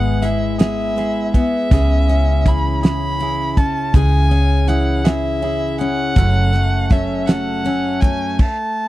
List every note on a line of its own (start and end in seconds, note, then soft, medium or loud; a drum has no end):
0.00 1.67 G#1 loud
0.00 2.97 G#3 medium
0.00 0.22 B3 soft
0.00 0.22 E4 medium
0.00 0.23 E4 soft
0.00 0.22 G#4 soft
0.00 0.60 G#4 medium
0.00 0.24 F#5 loud
0.22 0.59 G#3 medium
0.22 0.59 B3 medium
0.22 0.59 E4 medium
0.22 0.57 G#4 medium
0.22 0.59 E5 medium
0.22 closed hi-hat medium
0.58 0.95 G#3 medium
0.58 0.96 B3 medium
0.58 0.97 E4 medium
0.58 0.96 G#4 medium
0.58 1.30 E5 medium
0.58 snare loud
0.58 closed hi-hat medium
0.96 1.33 G#3 medium
0.96 1.34 B3 medium
0.96 1.34 E4 medium
0.96 1.32 G#4 medium
0.96 snare soft
0.96 closed hi-hat soft
1.34 1.72 B3 soft
1.34 1.71 E4 soft
1.34 1.71 G#4 medium
1.34 2.48 E5 loud
1.34 kick medium
1.34 closed hi-hat soft
1.71 3.90 C#2 medium
1.71 2.08 C#3 medium
1.71 2.08 E3 medium
1.71 2.09 C#4 medium
1.71 2.09 E4 medium
1.71 2.07 G#4 medium
1.71 kick loud
1.71 closed hi-hat medium
2.08 2.45 C#4 soft
2.08 2.46 E4 medium
2.08 2.45 G#4 medium
2.08 closed hi-hat medium
2.45 2.82 E3 medium
2.45 2.83 C#4 medium
2.45 2.82 E4 medium
2.45 2.82 G#4 medium
2.45 2.82 B5 medium
2.45 kick loud
2.45 closed hi-hat medium
2.83 3.21 C#3 medium
2.83 3.19 E3 medium
2.83 3.20 C#4 medium
2.83 3.20 E4 medium
2.83 3.20 G#4 medium
2.83 3.59 B5 loud
2.83 snare medium
2.83 closed hi-hat medium
3.19 3.57 E3 medium
3.19 3.57 C#4 medium
3.19 3.57 E4 medium
3.19 3.58 G#4 medium
3.19 closed hi-hat soft
3.57 3.94 C#4 soft
3.57 3.94 E4 soft
3.57 3.96 A5 medium
3.57 kick medium
3.57 closed hi-hat soft
3.94 6.13 C#2 loud
3.94 4.31 C#3 medium
3.94 4.31 E3 medium
3.94 4.31 C#4 medium
3.94 4.30 E4 medium
3.94 4.28 G#4 medium
3.94 4.70 G#5 loud
3.94 kick loud
3.94 closed hi-hat medium
4.29 4.66 C#4 soft
4.29 4.68 E4 soft
4.29 4.67 G#4 medium
4.29 closed hi-hat soft
4.67 5.05 E3 medium
4.67 5.04 C#4 medium
4.67 5.04 E4 medium
4.67 5.03 G#4 medium
4.67 5.07 F#5 medium
4.67 closed hi-hat medium
5.04 5.43 C#3 medium
5.04 5.40 E3 medium
5.04 5.41 C#4 medium
5.04 5.42 E4 medium
5.04 5.42 G#4 medium
5.04 5.80 E5 medium
5.04 snare loud
5.04 closed hi-hat medium
5.42 5.79 E3 medium
5.42 5.80 C#4 medium
5.42 5.79 E4 medium
5.42 5.78 G#4 medium
5.42 closed hi-hat soft
5.78 6.16 C#4 soft
5.78 6.17 E4 soft
5.78 6.16 G#4 medium
5.78 6.93 F#5 loud
5.78 closed hi-hat soft
6.16 8.35 F#1 loud
6.16 6.53 F#2 medium
6.16 6.54 C#3 medium
6.16 6.54 F#3 medium
6.16 6.54 A3 medium
6.16 6.52 C#4 medium
6.16 6.51 A4 medium
6.16 kick loud
6.16 closed hi-hat medium
6.52 6.89 F#3 soft
6.52 6.90 A3 soft
6.52 6.91 C#4 soft
6.52 6.90 A4 medium
6.52 closed hi-hat medium
6.90 7.28 F#3 medium
6.90 7.27 A3 medium
6.90 7.27 C#4 medium
6.90 7.26 A4 medium
6.90 7.28 E5 medium
6.90 kick loud
6.90 snare soft
6.90 closed hi-hat medium
7.27 7.66 F#2 medium
7.27 7.66 C#3 medium
7.27 7.64 F#3 medium
7.27 7.65 A3 medium
7.27 7.65 C#4 medium
7.27 7.65 A4 medium
7.27 8.02 F#5 medium
7.27 snare loud
7.27 closed hi-hat medium
7.65 8.02 F#3 medium
7.65 8.03 A3 medium
7.65 8.02 C#4 medium
7.65 8.01 A4 medium
7.65 closed hi-hat soft
8.01 8.40 A3 soft
8.01 8.40 C#4 medium
8.01 8.40 A4 medium
8.01 8.42 G#5 medium
8.01 kick medium
8.01 closed hi-hat medium
8.05 8.41 F#3 soft
8.39 8.88 A5 medium
8.39 kick loud
8.39 crash medium